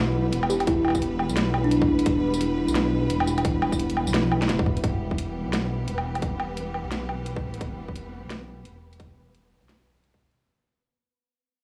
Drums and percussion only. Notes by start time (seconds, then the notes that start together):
0.33 closed hi-hat
0.43 low woodblock
0.50 tambourine
0.60 closed hi-hat, low woodblock
0.67 kick, closed hi-hat
0.85 low woodblock
0.88 low woodblock
0.90 low woodblock
0.95 kick, tambourine
1.02 closed hi-hat
1.19 low woodblock
1.29 tambourine
1.37 snare, closed hi-hat
1.54 low woodblock
1.71 closed hi-hat
1.82 kick
1.99 closed hi-hat
2.06 kick, closed hi-hat
2.34 tambourine
2.41 closed hi-hat
2.68 tambourine
2.75 snare, closed hi-hat
3.10 closed hi-hat
3.20 low woodblock
3.27 tambourine
3.38 closed hi-hat, low woodblock
3.45 kick, closed hi-hat
3.62 low woodblock
3.72 kick, tambourine
3.79 closed hi-hat
3.90 closed hi-hat
3.97 low woodblock
4.07 tambourine
4.14 snare, closed hi-hat, high tom
4.25 high tom
4.32 low woodblock
4.42 snare, closed hi-hat
4.49 snare, closed hi-hat
4.59 kick
4.66 kick, mid tom
4.77 closed hi-hat, mid tom
4.84 kick, closed hi-hat
5.11 kick
5.18 closed hi-hat
5.53 snare, closed hi-hat
5.88 closed hi-hat
5.98 low woodblock
6.15 closed hi-hat, low woodblock
6.22 kick, closed hi-hat
6.40 low woodblock
6.57 closed hi-hat
6.74 low woodblock
6.92 snare, closed hi-hat
7.09 low woodblock
7.26 closed hi-hat
7.36 kick
7.54 closed hi-hat
7.61 kick, closed hi-hat
7.88 kick
7.96 closed hi-hat
8.30 snare, closed hi-hat
8.65 closed hi-hat
8.93 closed hi-hat
9.00 kick, closed hi-hat
9.35 closed hi-hat
9.69 snare, closed hi-hat
10.04 closed hi-hat
10.14 kick
10.31 closed hi-hat